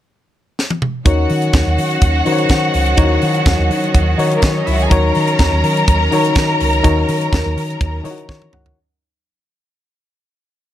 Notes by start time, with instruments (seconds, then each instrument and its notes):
0.59 snare
0.70 high tom
0.82 mid tom
1.05 fingered electric bass D#2, string section D#3 F#3 C#4 F#4 F#5, reed electric piano D#3 D#4 F#4 A#4 C#5, kick, closed hi-hat
1.30 fingered electric bass D#3, open hi-hat
1.42 closed hi-hat
1.53 fingered electric bass D#2, kick, snare, closed hi-hat
1.67 fingered electric bass D#2
1.78 fingered electric bass D#3, open hi-hat
1.91 closed hi-hat
2.02 fingered electric bass D#2, kick, closed hi-hat
2.25 reed electric piano D#3 D#4 F#4 A#4 C5, fingered electric bass D#3, open hi-hat
2.32 reed electric piano C#5
2.38 closed hi-hat
2.49 fingered electric bass D#3, kick, snare, closed hi-hat
2.74 fingered electric bass C#2, open hi-hat
2.86 closed hi-hat
2.97 fingered electric bass D#2, reed electric piano D#3 D#4 E4 A#4 C#5, kick, closed hi-hat
3.04 reed electric piano F#4
3.22 fingered electric bass D#3, open hi-hat
3.34 closed hi-hat
3.46 fingered electric bass D#2, kick, snare, closed hi-hat
3.59 fingered electric bass D#2
3.70 fingered electric bass D#3, open hi-hat
3.84 closed hi-hat
3.95 fingered electric bass D#2, kick, closed hi-hat
4.18 reed electric piano D#3 D#4 F#4 A#4 C#5, fingered electric bass D#3, open hi-hat
4.31 closed hi-hat
4.36 string section A#3 A#4
4.42 fingered electric bass D#3, string section B3 B4, kick, snare, closed hi-hat
4.51 string section C#4 C#5
4.58 string section D#4 D#5
4.67 fingered electric bass C#2, string section E4 E5, open hi-hat
4.75 string section F#4 F#5
4.79 string section G#4 G#5, closed hi-hat
4.89 fingered electric bass D#2, reed electric piano D#3 D#4 F#4 A#4 C#5, string section A#4 A#5, kick, closed hi-hat
5.15 fingered electric bass D#3, open hi-hat
5.27 closed hi-hat
5.39 fingered electric bass D#2, kick, snare, closed hi-hat
5.52 fingered electric bass D#2
5.64 fingered electric bass D#3, open hi-hat
5.77 closed hi-hat
5.88 fingered electric bass D#2, kick, closed hi-hat
6.12 reed electric piano D#3 D#4 F#4 A#4 C#5, fingered electric bass D#3, open hi-hat
6.25 closed hi-hat
6.35 fingered electric bass D#3, kick, snare, closed hi-hat
6.60 fingered electric bass C#2, open hi-hat
6.73 closed hi-hat
6.84 fingered electric bass D#2, reed electric piano D#3 D#4 F#4 A#4 C#5, kick, closed hi-hat
7.08 fingered electric bass D#3, open hi-hat
7.21 closed hi-hat
7.32 fingered electric bass D#2, kick, snare, closed hi-hat
7.46 fingered electric bass D#2
7.57 fingered electric bass D#3, open hi-hat
7.70 closed hi-hat
7.81 fingered electric bass D#2, kick, closed hi-hat
8.04 reed electric piano D#3 D#4 E4 A#4 C#5, fingered electric bass D#3, open hi-hat
8.11 reed electric piano F#4
8.18 closed hi-hat
8.29 fingered electric bass D#3, reed electric piano C#5, kick, snare
8.42 high tom
8.53 fingered electric bass C#2, reed electric piano F#5, mid tom
8.66 floor tom